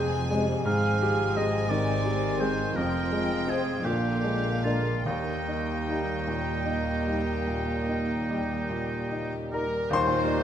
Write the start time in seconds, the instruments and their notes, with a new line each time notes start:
Already playing: double bass section F1, grand piano F2 C3 G#3, cello section F2, viola section G#3, violin section C4 G#4 G#5, oboe C5
0.00 grand piano G#4
0.31 viola section G3, grand piano G#3, french horn section G#3 C4
0.64 double bass section G#1, grand piano G#2, cello section G#2, viola section F3 G#3, violin section C4 G#4 G#5, oboe F5
1.02 grand piano G4
1.36 grand piano G#3, french horn section G#3 C4, oboe D#5
1.69 grand piano D#3, viola section D#3 C4, violin section G4, oboe D5
2.06 grand piano G4
2.39 french horn section G#3 C4, grand piano G#3, oboe C5
2.75 double bass section F1, cello section F2, grand piano F2, viola section F3 C4, violin section C4 F4 G5, oboe A#4
3.12 grand piano G#3
3.47 french horn section G#3 C4, grand piano F4 C5, oboe G#4
3.84 double bass section A#1, grand piano A#2, cello section A#2, viola section D3 A#3, violin section D4 F4 F5, oboe G4
4.24 grand piano G#3
4.64 french horn section G#3 D4, grand piano D4 A#4, oboe F4
5.05 cello section D#2, double bass section D#2, grand piano D#2, timpani D#3, viola section D#3 G3, violin section A#3 G4 G5, oboe D#4
5.48 grand piano D#4
5.88 grand piano G3, french horn section G3 D#4
6.27 grand piano A#2
6.66 grand piano D#4
7.07 grand piano G3, french horn section G3 D#4
7.47 grand piano A#2
7.89 grand piano D#4
8.30 french horn section G3 D#4, grand piano G3
8.70 grand piano A#2
9.11 grand piano D#4
9.51 grand piano G3 A#4 A#5, french horn section G3 D#4, oboe A#4, flute section A#4, violin section A#4
9.90 grand piano D#2 C6, double bass section D#2, trombone section A#2 G3, viola section G3 A#3, french horn section A#3 D#4, cello section D#4, trumpet section A#4, oboe C5, violin section C5, flute section C5
9.95 grand piano C5
10.07 grand piano A#2
10.25 grand piano G3